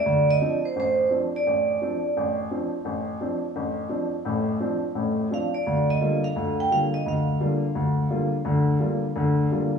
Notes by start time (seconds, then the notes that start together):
Already playing: D5
0.06 D2
0.31 D#5
0.41 F3 C4 D4
0.65 C5
0.76 A1 C5
1.10 F3 C4 D4
1.36 D5
1.47 A1
1.81 F3 C4 D4
2.17 A1
2.51 F3 C4 D4
2.85 A1
3.21 F3 C4 D4
3.56 A1
3.89 F3 C4 D4
4.25 A1 A2
4.60 F3 C4 D4
4.95 A1 A2
5.31 F3 C4 D4 F5
5.54 D5
5.67 D2
5.90 D#5
6.01 D3 G3 A#3 F4
6.24 F5
6.36 D2 D3
6.60 G5
6.71 D3 G3 A#3 F4 F5
6.94 D#5
7.06 D2 F5
7.40 D3 G3 A#3 F4
7.75 D2
8.10 D3 G3 A#3 F4
8.45 D2 D3
8.79 D3 G3 A#3 F4
9.15 D2 D3
9.51 D3 G3 A#3 F4